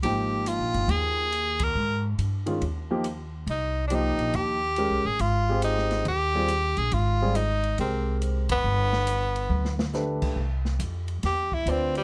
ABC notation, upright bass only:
X:1
M:4/4
L:1/8
Q:"Swing" 1/4=139
K:Ab
V:1 name="Upright bass" clef=bass
A,,,2- (3A,,, B,,, G,,, E,,4 | A,,2 G,,2 E,,4 | C,,3 B,,, E,,2- (3E,, C,, =A,,, | A,,,4 E,,3 B,,, |
A,,,4 C,,3 _G,,, | G,,,4 =D,,3 _D,, | [K:C] C,,2 F,,2 E,,2 D,,2 |]